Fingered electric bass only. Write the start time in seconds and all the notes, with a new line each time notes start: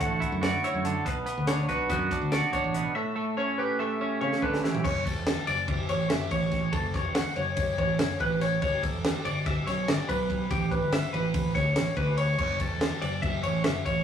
0.01 A1
0.32 F#2
0.74 F#2
1.06 B1
1.38 D2
1.69 B1
1.89 F#2
2.22 D2
2.64 A1
4.85 F#1
5.15 E1
5.48 F#1
5.89 A1
6.10 F#1
6.31 A1
6.73 F#1
7.05 E1
7.36 F#1
7.79 A1
7.99 F#1
8.20 A1
8.63 G1
8.93 E1
9.25 G1
9.66 B1
9.88 G1
10.09 B1
10.51 A1
10.82 G1
11.14 A1
11.55 D2
11.76 A1
11.97 D2
12.39 F#1
12.71 E1
13.02 F#1
13.44 A1
13.66 F#1
13.86 A1